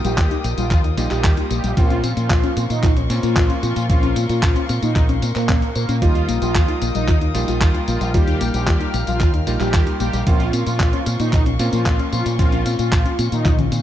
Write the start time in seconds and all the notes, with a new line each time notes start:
Already playing: G3 A#3 D#4 F4 A#4 F5 G5 D#6
0.05 A#1 G3 G4, closed hi-hat, tambourine
0.18 D#2 F4, kick, clap, closed hi-hat, tambourine
0.31 D#4, closed hi-hat
0.44 A#1 A#3, closed hi-hat, tambourine
0.58 A#1 G3 F4, closed hi-hat, tambourine
0.71 D#2 F4, kick, clap, closed hi-hat, tambourine
0.84 D#4, closed hi-hat
0.97 A#1 G3 A#3 D#4 F4, closed hi-hat, tambourine
1.11 A#1 G3 G4, clap, closed hi-hat, tambourine
1.24 D#2 F4, kick, clap, closed hi-hat, tambourine
1.37 D#4, closed hi-hat
1.50 A#1 A#3 G4, closed hi-hat, tambourine
1.64 A#1 G3, closed hi-hat, tambourine
1.77 A#1 A#3 C4 C#4 F4 A#4 F5 C6 C#6, kick, closed hi-hat, tambourine
1.90 C#4, closed hi-hat
2.04 A#2 C4, closed hi-hat, tambourine
2.17 A#2 A#3 F4, closed hi-hat, tambourine
2.30 A#1 F4, kick, clap, closed hi-hat, tambourine
2.43 C#4, closed hi-hat
2.57 A#2 C4, closed hi-hat, tambourine
2.70 A#2 A#3 D#4, closed hi-hat, tambourine
2.83 A#1 F4, kick, clap, closed hi-hat, tambourine
2.97 C#4, closed hi-hat
3.10 A#2 A#3 C4 C#4 F4, closed hi-hat, tambourine
3.23 A#2 A#3 F4, closed hi-hat, tambourine
3.36 A#1 F4, kick, clap, closed hi-hat, tambourine
3.50 C#4, closed hi-hat
3.63 A#2 C4 F4, closed hi-hat, tambourine
3.76 A#2 A#3, closed hi-hat, tambourine
3.90 A#1 A#3 C4 C#4 F4, kick, closed hi-hat, tambourine
4.03 C#4, closed hi-hat
4.16 A#2 C4, closed hi-hat, tambourine
4.29 A#2 A#3 F4, closed hi-hat, tambourine
4.43 A#1 F4, kick, clap, closed hi-hat, tambourine
4.56 C#4, closed hi-hat
4.69 A#2 C4, closed hi-hat, tambourine
4.82 A#2 A#3 D#4, closed hi-hat, tambourine
4.96 A#1 F4, kick, clap, closed hi-hat, tambourine
5.09 C#4, closed hi-hat
5.22 A#2 C4, closed hi-hat, tambourine
5.36 A#2 A#3 C5, clap, closed hi-hat, tambourine
5.49 A#1 C#4, kick, clap, closed hi-hat, tambourine
5.62 A#3, closed hi-hat
5.75 A#2 A#3 C5, closed hi-hat, tambourine
5.89 A#2 C#4, closed hi-hat, tambourine
6.02 D#2 G3 A#3 D#4 F4 G5 D#6, kick, closed hi-hat, tambourine
6.15 D#4, closed hi-hat
6.28 A#1 A#3, closed hi-hat, tambourine
6.42 A#1 G3 F4, closed hi-hat, tambourine
6.55 D#2 F4, kick, clap, closed hi-hat, tambourine
6.68 D#4, closed hi-hat
6.82 A#1 A#3, closed hi-hat, tambourine
6.95 A#1 G3 D#4, closed hi-hat, tambourine
7.08 D#2 F4, kick, clap, closed hi-hat, tambourine
7.21 D#4, closed hi-hat
7.35 A#1 G3 A#3 D#4 F4, closed hi-hat, tambourine
7.48 A#1 G3 F4, closed hi-hat, tambourine
7.61 D#2 F4, kick, clap, closed hi-hat, tambourine
7.74 D#4, closed hi-hat
7.88 A#1 A#3 F4, closed hi-hat, tambourine
8.01 A#1 G3, closed hi-hat, tambourine
8.14 D#2 G3 A#3 D#4 F4 G4 F6, kick, closed hi-hat, tambourine
8.28 D#4, closed hi-hat
8.41 A#1 A#3, closed hi-hat, tambourine
8.54 A#1 G3 G4, closed hi-hat, tambourine
8.67 D#2 F4, kick, clap, closed hi-hat, tambourine
8.81 D#4, closed hi-hat
8.94 A#1 A#3, closed hi-hat, tambourine
9.07 A#1 G3 F4, closed hi-hat, tambourine
9.20 D#2 F4, kick, clap, closed hi-hat, tambourine
9.34 D#4, closed hi-hat
9.47 A#1 G3 A#3 D#4 F4, closed hi-hat, tambourine
9.60 A#1 G3 G4, clap, closed hi-hat, tambourine
9.74 D#2 F4, kick, clap, closed hi-hat, tambourine
9.87 D#4, closed hi-hat
10.00 A#1 A#3 G4, closed hi-hat, tambourine
10.13 A#1 G3, closed hi-hat, tambourine
10.27 A#1 A#3 C4 C#4 F4 C6 C#6, kick, closed hi-hat, tambourine
10.40 C#4, closed hi-hat
10.53 A#2 C4, closed hi-hat, tambourine
10.66 A#2 A#3 F4, closed hi-hat, tambourine
10.80 A#1 F4, kick, clap, closed hi-hat, tambourine
10.93 C#4, closed hi-hat
11.06 A#2 C4, closed hi-hat, tambourine
11.20 A#2 A#3 D#4, closed hi-hat, tambourine
11.33 A#1 F4, kick, clap, closed hi-hat, tambourine
11.46 C#4, closed hi-hat
11.59 A#2 A#3 C4 C#4 F4, closed hi-hat, tambourine
11.73 A#2 A#3 F4, closed hi-hat, tambourine
11.86 A#1 F4, kick, clap, closed hi-hat, tambourine
11.99 C#4, closed hi-hat
12.12 A#2 C4 F4, closed hi-hat, tambourine
12.26 A#2 A#3, closed hi-hat, tambourine
12.39 A#1 A#3 C4 C#4 F4, kick, closed hi-hat, tambourine
12.52 C#4, closed hi-hat
12.66 A#2 C4, closed hi-hat, tambourine
12.79 A#2 A#3 F4, closed hi-hat, tambourine
12.92 A#1 F4, kick, clap, closed hi-hat, tambourine
13.06 C#4, closed hi-hat
13.19 A#2 C4, closed hi-hat, tambourine
13.32 A#2 A#3 D#4, closed hi-hat, tambourine
13.45 A#1 F4, kick, clap, closed hi-hat, high tom, tambourine
13.59 C#4, closed hi-hat, high tom
13.72 A#2 C4, closed hi-hat, tambourine